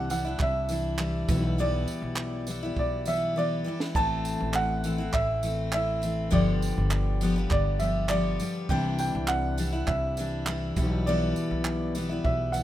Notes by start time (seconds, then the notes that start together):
Already playing: C2 C3 G3 D4 E4
0.10 E3 G3 D4 E4 F#5, tambourine
0.25 G3 D4 E4
0.39 C2 E5, kick, clap
0.69 E3 G3 D4 E4, tambourine
0.98 E3 G3 D4 E4, clap
1.29 B1 E3 G3 B3 E4, kick, tambourine
1.58 B2 E3 G3 B3 E4 D5
1.88 tambourine
2.02 B1
2.16 clap
2.47 E3 G3 B3 E4, tambourine
2.63 G3 B3 E4
2.77 B1 D5, kick
3.06 E3 G3 B3 E4 E5, tambourine
3.36 E3 G3 B3 E4 D5
3.64 E3 G3 B3 E4
3.80 snare
3.95 A1 A2 E3 A3 C4 E4 A5, kick
4.25 tambourine
4.40 A1
4.54 F#5, clap
4.84 E3 A3 C4 E4, tambourine
4.98 A3 C4 E4
5.13 A1 E5, kick, clap
5.43 E3 A3 C4 E4, tambourine
5.72 E3 A3 C4 E4 E5, clap
6.02 E3 A3 C4 E4, tambourine
6.31 G1 G2 D3 F3 G3 B3 G4 D5, kick
6.62 tambourine
6.78 G1
6.91 clap
7.21 F3 G3 B3 G4, tambourine
7.36 F3 G3 B3 G4
7.50 G1 D5, kick, clap
7.79 F3 G3 B3 E5, tambourine
7.84 G4
8.09 F3 G3 B3 G4 D5, clap
8.40 F3 G3 B3 G4, tambourine
8.69 C2 C3 E3 G3 D4 E4 G5, kick
8.99 G5, tambourine
9.15 C2
9.28 F#5, clap
9.58 E3 G3 D4 E4, tambourine
9.72 G3 D4 E4
9.87 C2 E5, kick, clap
10.17 E3 G3 D4 E4, tambourine
10.46 E3 G3 D4, clap
10.50 E4
10.76 B1 E3 G3 B3 E4, kick, tambourine
11.06 B2 E3 G3 B3 E4 D5
11.36 tambourine
11.51 B1
11.65 clap
11.95 E3 G3 B3 E4, tambourine
12.09 G3 B3 E4
12.24 B1 E5, kick
12.52 E3 G3 B3 F#5, tambourine
12.56 E4